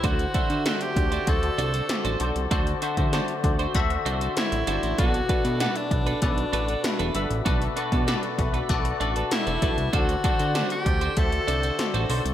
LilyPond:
<<
  \new Staff \with { instrumentName = "Tine electric piano" } { \time 4/4 \key b \phrygian \tempo 4 = 97 <fis' a' c'' d''>8 <fis' a' c'' e''>8 <fis' a' c'' e''>8 <fis' a' c'' d''>8 <fis' a' c'' d''>8 <fis' a' c'' d''>8 <fis' a' c'' d''>8 <fis' a' c'' d''>8 | <fis' a' c'' d''>8 <fis' a' c'' e''>8 <fis' a' c'' d''>8 <fis' a' c'' d''>8 <fis' a' c'' e''>8 <fis' a' c'' d''>8 <fis' a' c'' d''>8 <fis' a' c'' d''>8 | <fis' a' b' d''>8 <fis' a' b' e''>8 <fis' a' b' d''>8 <fis' a' b' d''>8 <fis' a' b' d''>8 <fis' a' b' d''>8 <fis' a' b' e''>8 <fis' a' b' e''>8 | <fis' a' b' d''>8 <fis' a' b' d''>8 <fis' a' b' d''>8 <fis' a' b' e''>8 <fis' a' b' d''>8 <fis' a' b' d''>8 <fis' a' b' e''>8 <fis' a' b' d''>8 |
<fis' a' c'' d''>8 <fis' a' c'' d''>8 <fis' a' c'' d''>8 <fis' a' c'' d''>8 <fis' a' c'' e''>8 <fis' a' c'' d''>8 <fis' a' c'' d''>8 <fis' a' c'' d''>8 | }
  \new Staff \with { instrumentName = "Tine electric piano" } { \clef bass \time 4/4 \key b \phrygian d4. r2 r8 | d4. r2 r8 | b,4. r2 r8 | b,4. r2 r8 |
d4. r2 r8 | }
  \new Staff \with { instrumentName = "Alto saxophone" } { \time 4/4 \key b \phrygian fis'4 fis'16 g'8. a'4. r8 | r2. e'4 | fis'4 fis'16 d'8. d'4. r8 | r2. e'4 |
fis'4 fis'16 g'8. a'4. r8 | }
  \new Staff \with { instrumentName = "Clean electric guitar" } { \time 4/4 \key b \phrygian <d' fis' c''>16 r16 <d' fis' c''>16 <d' fis' c''>16 <d' fis' c''>16 r8 <d' fis' c''>16 r8 <d' fis' c''>16 <d' fis' c''>16 r16 <d' fis' c''>16 <d' fis' c''>16 r16 | <d' fis' c''>16 r16 <d' fis' c''>16 <d' fis' c''>16 <d' fis' c''>16 r8 <d' fis' c''>16 r8 <d' fis' c''>16 <d' fis' c''>16 r8 <d' fis' c''>16 <d' fis' c''>16 | <d' a' b'>16 r16 <d' a' b'>16 <d' a' b'>16 <d' a' b'>16 r8 <d' a' b'>16 r8 <d' a' b'>16 <d' a' b'>16 r16 <d' a' b'>16 <d' a' b'>16 r16 | <d' a' b'>16 r16 <d' a' b'>16 <d' a' b'>16 <d' a' b'>16 r8 <d' a' b'>16 r8 <d' a' b'>16 <d' a' b'>16 r16 <d' a' b'>16 <d' a' b'>16 r16 |
<d' fis' c''>16 r16 <d' fis' c''>16 <d' fis' c''>16 <d' fis' c''>16 r8 <d' fis' c''>16 r8 <d' fis' c''>16 <d' fis' c''>16 r16 <d' fis' c''>16 <d' fis' c''>16 r16 | }
  \new Staff \with { instrumentName = "Analog synth bass" } { \clef bass \time 4/4 \key b \phrygian d,8 r16 d8 r16 d,8 d,8 c,8 r16 a,,16 b,,16 c,16 | d,8 r16 d8 r16 d,8 d,8 c,8 r16 a,,16 g,,16 a,,16 | b,,8 r16 b,8 r16 b,,8 b,,8 a,,8 r16 e,,16 g,,16 a,,16 | b,,8 r16 b,8 r16 b,,8 b,,8 a,,8 r16 e,,16 b,,16 c,16 |
d,8 r16 d8 r16 d,8 d,8 c,8 r16 a,,16 b,,16 c,16 | }
  \new DrumStaff \with { instrumentName = "Drums" } \drummode { \time 4/4 <hh bd>16 hh16 <hh bd>16 hh16 <hh sn>16 hh16 <hh bd>16 hh16 <hh bd>16 hh16 hh16 hh16 <hh sn>16 hh16 hh16 hh16 | <hh bd>16 hh16 hh16 <hh bd>16 <hh sn>16 hh16 <hh bd>16 hh16 <hh bd>16 hh16 hh16 hh16 <hh sn>16 hh16 hh16 hh16 | <hh bd>16 hh16 <hh bd>16 hh16 <hh sn>16 hh16 <hh bd>16 hh16 <hh bd>16 hh16 hh16 hh16 <hh sn>16 hh16 hh16 hh16 | <hh bd>16 hh16 hh16 <hh bd>16 <hh sn>16 hh16 <hh bd>16 hh16 <hh bd>16 hh16 hh16 hh16 <hh sn>16 hh16 <hh bd>16 hh16 |
<hh bd>16 hh16 <hh bd>16 hh16 <hh sn>16 hh16 <hh bd>16 hh16 <hh bd>16 hh16 hh16 hh16 <hh sn>16 hh16 hho16 hh16 | }
>>